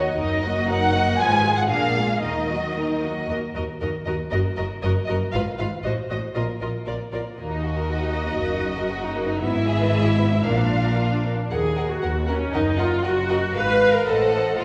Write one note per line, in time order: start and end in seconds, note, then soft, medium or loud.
0.00 0.15 D#2 soft
0.00 0.16 D#2 soft
0.00 0.19 A#3 soft
0.00 0.19 F#4 soft
0.00 0.19 D#5 soft
0.18 1.20 F#1 medium
0.18 1.20 F#2 medium
0.18 0.43 F#3 soft
0.18 0.42 D#4 soft
0.18 0.43 D#4 medium
0.18 0.42 A#4 soft
0.18 0.68 D#5 medium
0.43 0.70 A#3 soft
0.43 0.69 F#4 soft
0.43 0.70 F#4 soft
0.43 0.69 D#5 soft
0.69 0.95 F#3 soft
0.69 0.94 D#4 soft
0.69 0.95 D#4 soft
0.69 0.94 A#4 soft
0.69 1.19 F#5 medium
0.94 1.20 A#3 soft
0.94 1.19 F#4 soft
0.94 1.20 F#4 soft
0.94 1.19 D#5 soft
1.19 1.69 G#1 medium
1.19 1.69 G#2 medium
1.19 1.43 F3 medium
1.19 1.43 F4 medium
1.19 1.43 G#4 soft
1.19 1.43 B4 soft
1.19 1.58 G#5 medium
1.45 1.71 G#3 soft
1.45 1.71 F4 soft
1.45 1.71 G#4 soft
1.45 1.69 G#4 soft
1.57 1.62 F#5 medium
1.70 2.23 A#1 soft
1.70 2.23 A#2 medium
1.70 1.95 A#3 soft
1.70 1.95 D4 soft
1.70 1.95 G#4 soft
1.70 1.95 A#4 soft
1.70 2.22 F5 medium
1.96 2.23 G#3 soft
1.96 2.22 A#3 soft
1.96 2.23 F4 soft
1.96 2.23 G#4 soft
2.22 3.08 D#2 soft
2.22 3.08 D#3 soft
2.22 2.48 A#3 soft
2.22 2.48 D#4 soft
2.22 2.48 A#4 soft
2.22 3.02 D#5 medium
2.49 2.77 F#3 soft
2.49 2.77 A#3 soft
2.49 2.76 F#4 soft
2.49 2.77 D#5 soft
2.76 3.03 A#3 soft
2.76 3.03 D#4 soft
2.76 3.04 D#4 soft
2.76 3.03 A#4 soft
3.03 3.30 F#3 soft
3.03 3.30 A#3 soft
3.03 3.30 F#4 soft
3.03 3.30 D#5 soft
3.30 3.38 D#2 soft
3.30 3.39 D#2 soft
3.30 3.39 F#4 soft
3.30 3.38 A#4 soft
3.30 3.38 D#5 soft
3.55 3.63 D#2 soft
3.55 3.64 D#2 soft
3.55 3.63 F#4 soft
3.55 3.63 A#4 soft
3.55 3.63 D#5 soft
3.81 3.89 D#2 soft
3.81 3.89 F#4 soft
3.81 3.89 A#4 soft
3.81 3.89 D#5 soft
4.06 4.15 D#2 soft
4.06 4.15 F#4 soft
4.06 4.15 A#4 soft
4.06 4.14 D#5 soft
4.31 4.40 F#1 medium
4.31 4.40 F#2 medium
4.31 4.41 F#4 medium
4.31 4.40 A#4 medium
4.31 4.39 D#5 medium
4.57 4.66 F#1 medium
4.57 4.66 F#2 medium
4.57 4.66 F#4 soft
4.57 4.65 A#4 soft
4.57 4.65 D#5 medium
4.82 4.91 F#1 medium
4.82 4.91 F#2 medium
4.82 4.92 F#4 medium
4.82 4.91 A#4 medium
4.82 4.90 D#5 medium
5.07 5.17 F#1 medium
5.07 5.17 F#2 medium
5.07 5.17 F#4 medium
5.07 5.17 A#4 medium
5.07 5.15 D#5 medium
5.33 5.42 G#1 medium
5.33 5.42 G#2 medium
5.33 5.42 F4 medium
5.33 5.42 B4 medium
5.33 5.41 F5 medium
5.59 5.67 G#1 medium
5.59 5.68 G#2 medium
5.59 5.67 F4 medium
5.59 5.67 B4 soft
5.59 5.67 F5 medium
5.84 5.92 A1 medium
5.84 5.94 A2 medium
5.84 5.93 F#4 medium
5.84 5.94 C5 medium
5.84 5.92 D#5 medium
6.10 6.18 A1 soft
6.10 6.19 A2 medium
6.10 6.18 F#4 soft
6.10 6.19 C5 soft
6.10 6.18 D#5 soft
6.35 6.43 A#1 soft
6.35 6.44 A#2 medium
6.35 6.43 F4 soft
6.35 6.43 A#4 soft
6.35 6.43 D#5 soft
6.60 6.69 A#1 soft
6.60 6.69 A#2 soft
6.60 6.69 F4 soft
6.60 6.68 A#4 soft
6.60 6.70 D#5 soft
6.86 6.95 A#1 soft
6.86 6.95 A#2 soft
6.86 6.95 F4 soft
6.86 6.94 A#4 soft
6.86 6.96 D5 soft
7.12 7.22 A#1 soft
7.12 7.21 A#2 soft
7.12 7.20 F4 soft
7.12 7.21 A#4 soft
7.12 7.22 D5 soft
7.38 8.37 D#2 medium
7.38 7.51 A#3 soft
7.38 9.37 F#4 medium
7.38 9.37 D#5 medium
7.51 7.64 D#4 soft
7.64 7.77 F#4 soft
7.77 7.90 A#4 soft
7.89 8.03 F#4 medium
8.03 8.15 D#4 soft
8.15 8.28 A#3 soft
8.28 8.41 D#4 soft
8.40 9.42 F#1 medium
8.40 9.41 F#2 medium
8.40 8.52 A#3 soft
8.53 8.66 D#4 soft
8.66 8.78 F#4 soft
8.78 8.91 A#4 medium
8.90 9.03 F#4 medium
9.04 9.16 D#4 medium
9.16 9.28 A#3 medium
9.28 9.41 D#4 medium
9.41 10.46 G#1 medium
9.41 10.45 G#2 medium
9.41 9.53 B3 medium
9.41 10.43 E4 medium
9.41 10.43 E5 medium
9.54 9.67 E4 medium
9.67 9.80 G#4 medium
9.81 9.93 B4 medium
9.93 10.06 G#4 medium
10.05 10.19 E4 medium
10.19 10.32 B3 medium
10.32 10.45 E4 medium
10.45 11.29 A#1 medium
10.45 11.29 A#2 medium
10.45 10.57 A#3 medium
10.45 11.31 D4 medium
10.45 11.31 F5 medium
10.58 10.72 D4 soft
10.71 10.85 F4 soft
10.85 10.98 A#4 soft
10.98 11.11 F4 soft
11.11 11.25 D4 soft
11.25 11.38 A#3 soft
11.37 11.50 D4 soft
11.51 11.96 D#2 soft
11.51 11.87 G#4 medium
11.51 11.59 A#4 soft
11.51 11.60 F#5 soft
11.77 11.85 A#4 soft
11.77 11.85 F#5 soft
11.90 12.28 F#4 medium
12.02 12.47 D#2 soft
12.02 12.11 A#4 soft
12.02 12.10 F#5 soft
12.28 12.53 C#4 medium
12.28 12.36 A#4 soft
12.28 12.36 F#5 soft
12.53 12.98 F#1 medium
12.53 12.98 F#2 medium
12.53 12.79 D#4 medium
12.53 12.62 A#4 soft
12.53 12.62 D#5 soft
12.53 12.61 F#5 soft
12.79 13.04 F4 medium
12.79 12.87 A#4 soft
12.79 12.87 D#5 soft
12.79 12.87 F#5 soft
13.03 13.49 F#1 medium
13.03 13.49 F#2 medium
13.03 13.54 F#4 medium
13.03 13.12 A#4 soft
13.03 13.12 D#5 soft
13.03 13.11 F#5 soft
13.29 13.38 A#4 soft
13.29 13.38 D#5 soft
13.29 13.37 F#5 soft
13.54 14.02 G#1 medium
13.54 14.02 G#2 medium
13.54 13.93 B4 medium
13.54 14.03 B4 soft
13.54 14.02 F5 soft
13.54 14.03 F5 soft
13.94 14.06 A#4 medium
14.06 14.57 A1 soft
14.06 14.57 A2 medium
14.06 14.59 A4 medium
14.06 14.57 C5 soft
14.06 14.57 D#5 soft
14.06 14.58 F#5 soft
14.58 14.64 A#1 soft
14.58 14.64 A#2 soft
14.58 14.64 F4 medium
14.58 14.64 A#4 soft
14.58 14.64 D#5 soft
14.58 14.64 F5 soft